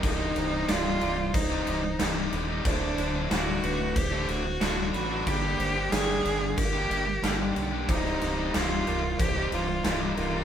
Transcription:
<<
  \new Staff \with { instrumentName = "Vibraphone" } { \time 4/4 \key c \minor \tempo 4 = 92 bes'8 c''8 d''4 c''4 r4 | c''4 r8 b'8 c''4 r8 b''8~ | b''8 c''8 d''4 bes'4 r4 | c''4 r8 bes'8 c''4 r8 bes'8 | }
  \new Staff \with { instrumentName = "Cello" } { \time 4/4 \key c \minor ees'4 f'4 ees'4. r8 | d'4 fis'4 g'8 fis'4 fis'8 | g'4 aes'4 g'4. r8 | ees'4 f'4 g'8 f'4 f'8 | }
  \new Staff \with { instrumentName = "Distorted electric guitar" } { \clef bass \time 4/4 \key c \minor <c, g, c g ees'>8. <c g ees'>16 <c, g, c g ees'>8 <g, c g ees'>8. <c g ees'>16 <g, c g ees'>8 <c, g, c g ees'>16 <c g ees'>8 <c g ees'>16 | <d, a, d fis a d'>8. <d fis a d'>16 <d, a, d fis a d'>8 <d fis a d'>8. <d fis a d'>16 <d fis a d'>8 <d, a, d fis a d'>16 <d fis a d'>8 <d fis a d'>16 | <g, d g bes d' g'>8. <g bes d' g'>16 <g, d g bes d' g'>8 <g bes d' g'>8. <g bes d' g'>16 <g bes d' g'>8 <g, d g bes d' g'>16 <g bes d' g'>8 <g bes d' g'>16 | <c, g, c g ees'>8. <c g ees'>16 <c, g, c g ees'>8 <g, c g ees'>8. <c g ees'>16 <g, c g ees'>8 <c, g, c g ees'>16 <c g ees'>8 <c g ees'>16 | }
  \new Staff \with { instrumentName = "Overdriven electric guitar" } { \clef bass \time 4/4 \key c \minor <c, g, c g ees'>8. <c g ees'>16 <c, g, c g ees'>8 <g, c g ees'>8. <c g ees'>16 <g, c g ees'>8 <c, g, c g ees'>16 <c g ees'>8 <c g ees'>16 | <d, a, d fis a d'>8. <d fis a d'>16 <d, a, d fis a d'>8 <d fis a d'>8. <d fis a d'>16 <d fis a d'>8 <d, a, d fis a d'>16 <d fis a d'>8 <d fis a d'>16 | <g, d g bes d' g'>8. <g bes d' g'>16 <g, d g bes d' g'>8 <g bes d' g'>8. <g bes d' g'>16 <g bes d' g'>8 <g, d g bes d' g'>16 <g bes d' g'>8 <g bes d' g'>16 | <c, g, c g ees'>8. <c g ees'>16 <c, g, c g ees'>8 <g, c g ees'>8. <c g ees'>16 <g, c g ees'>8 <c, g, c g ees'>16 <c g ees'>8 <c g ees'>16 | }
  \new Staff \with { instrumentName = "Fingered electric bass" } { \clef bass \time 4/4 \key c \minor c,,8 c,,8 c,,8 c,,8 c,,8 c,,8 c,,8 ees,,8 | d,,8 d,,8 d,,8 d,,8 d,,8 d,,8 d,,8 a,,8 | g,,8 g,,8 g,,8 g,,8 g,,8 g,,8 g,,8 b,,8 | c,,8 c,,8 c,,8 c,,8 c,,8 c,,8 c,,8 c,,8 | }
  \new DrumStaff \with { instrumentName = "Drums" } \drummode { \time 4/4 <cymc bd>8 cymc8 <cymc sn>8 cymc8 <cymc bd>8 cymc8 <cymc sn>8 cymc8 | <cymc bd>8 <cymc sn>8 <cymc sn>8 cymc8 <cymc bd>8 cymc8 <cymc sn>8 cymc8 | <cymc bd>8 <cymc sn>8 <cymc sn>8 cymc8 <cymc bd>8 cymc8 <cymc sn>8 cymc8 | <cymc bd>16 sn16 <cymc sn>8 <cymc sn>8 cymc8 <cymc bd>8 cymc8 <cymc sn>8 cymc8 | }
>>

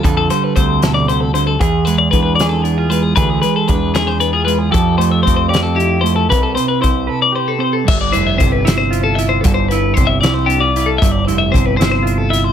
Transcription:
<<
  \new Staff \with { instrumentName = "Clean electric guitar" } { \time 6/8 \key g \mixolydian \tempo 4. = 77 b'16 a'16 c''16 b'16 c''8 a'16 d''16 c''16 a'16 c''16 a'16 | gis'8 b'16 d''16 b'16 b'16 d''16 a'16 gis'8 b'16 gis'16 | b'16 gis'16 b'16 a'16 b'8 gis'16 c''16 b'16 gis'16 b'16 gis'16 | a'8 c''16 e''16 c''16 c''16 d''16 a'16 g'8 c''16 a'16 |
b'16 a'16 c''16 b'16 c''8 a'16 d''16 c''16 a'16 c''16 a'16 | e''16 d''16 c''16 e''16 c''16 b'16 c''16 c''8 a'16 e''16 c''16 | a'16 c''16 b'8 c''16 e''16 d''16 c''16 g'16 d''8 a'16 | e''16 d''16 c''16 e''16 c''16 b'16 c''16 c''8 a'16 e''16 c''16 | }
  \new Staff \with { instrumentName = "Clean electric guitar" } { \time 6/8 \key g \mixolydian << { a'4 c'2 | gis'4 d'8 gis'8 d'16 f'8. | gis'4 d'8 gis'8 d'16 f'8. | g'4 c'8 g'8 e'4 |
b'4 e'8 b'8 g'4 | r8 e'4 e'8 f'8 e'8 | r8 e'4 e'8 d'16 f'16 e'8 | r8 e'4 e'8 f'8 e'8 | } \\ { d8 g4 b,8 c8 d8 | e8 gis2 gis8 | e8 gis2 gis8 | f8 a2 a8 |
c8 c'2 c'8 | g,4 c2 | g,4 c2 | g,4 c2 | } >> }
  \new Staff \with { instrumentName = "Picked electric bass" } { \clef bass \time 6/8 \key g \mixolydian f,8 r8 d,2 | e,4 e,2 | d,8 r8 e,2 | f,4 f,2 |
c,8 r8 c,8 r4. | g,,8 f,,8 g,,2 | g,,4 g,,8 c,4. | g,,8 f,,8 g,,2 | }
  \new DrumStaff \with { instrumentName = "Drums" } \drummode { \time 6/8 <hh bd>8 hh8 <hh bd>8 <hh sn>8 hh8 hh8 | <hh bd>8 hh8 <hh bd>8 <hh sn>8 hh8 hh8 | <hh bd>8 hh8 <hh bd>8 <hh sn>8 hh8 hh8 | <hh bd>8 hh8 <hh bd>8 <hh sn>8 hh8 hh8 |
<hh bd>8 hh8 <hh bd>8 r4. | <cymc bd>8 hh8 <hh bd>8 <hh sn>8 hh8 hh8 | <hh bd>8 hh8 <hh bd>8 <hh sn>8 hh8 hh8 | <hh bd>8 hh8 <hh bd>8 <hh sn>8 hh8 hh8 | }
>>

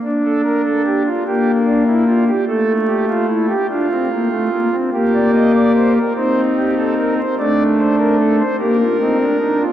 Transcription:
<<
  \new Staff \with { instrumentName = "Pipe organ" } { \time 6/8 \key g \minor \tempo 4. = 49 << { r2. | r2. | r16 d''16 ees''16 d''16 c''16 bes'16 c''8 g'16 a'16 bes'16 c''16 | d''8 c''16 bes'16 a'16 c''16 bes'4. | } \\ { r16 a'16 bes'16 a'16 g'16 f'16 g'8 d'16 e'16 f'16 g'16 | a'8 g'16 f'16 e'16 g'16 f'4. | g'4. ees'4. | d'4. g'16 f'16 ees'16 d'16 ees'16 f'16 | } >> }
  \new Staff \with { instrumentName = "Pipe organ" } { \time 6/8 \key g \minor d'4. bes4. | a4. d'16 c'16 bes16 a16 bes16 c'16 | bes4. c'4. | a4. bes8 c'8 d'8 | }
>>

